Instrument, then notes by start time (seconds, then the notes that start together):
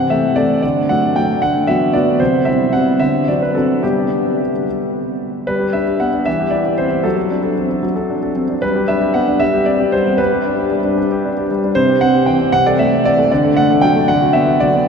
grand piano
Already playing: C3 F#5
0.10 E3 A3 A4 E5
0.36 E3 A3 A4 D5
0.62 D3 D5
0.89 F#3 A3 A4 F#5
1.16 F#3 A3 A4 G5
1.42 D3 F#5
1.67 F#3 B3 F#4 E5
1.93 F#3 B3 F#4 D5
2.20 C3 C5
2.45 G3 C4 E4 E5
2.73 G3 C4 E4 F#5
3.00 D3 E5
3.28 F#3 C4 D4 D5
3.42 B4
3.55 F#3 C4 D4 A4
3.83 G3 B3 D4 G4
5.47 G3 B4
5.59 G4
5.73 D4 E5
5.87 G4
6.00 B3 F#5
6.13 D4
6.26 E3 E5
6.40 G4
6.50 E4 D5
6.65 G4
6.78 C4 C5
6.91 E4
7.04 F#3 A4
7.17 A4
7.31 D4
7.43 A4
7.57 C4
7.70 D4
7.83 F#3
7.96 A4
8.10 D4
8.23 A4
8.36 C4
8.49 D4
8.62 G3 B4
8.76 G4
8.88 D4 E5
9.02 G4
9.14 B3 F#5
9.28 D4
9.40 G3 E5
9.54 G4
9.66 C4 D5
9.80 G4
9.92 G3 C5
10.07 C4
10.18 G3 B4
10.33 G4
10.46 D4
10.59 G4
10.72 G3
10.84 D4
10.98 G3
11.11 G4
11.25 D4
11.37 G4
11.51 G3
11.64 D4
11.75 C3 C5
11.89 G4
12.01 C4 F#5
12.15 G4
12.26 E3 G5
12.41 C4
12.52 C3 F#5
12.66 A4 D5
12.79 A3 E5
12.93 A4
13.05 E3 D5
13.19 A3
13.31 D3 D5
13.44 A4
13.57 A3 F#5
13.70 A4
13.82 F#3 G5
13.95 A3
14.08 D3 F#5
14.21 F#4
14.33 B3 E5
14.47 F#4
14.60 F#3 D5
14.75 B3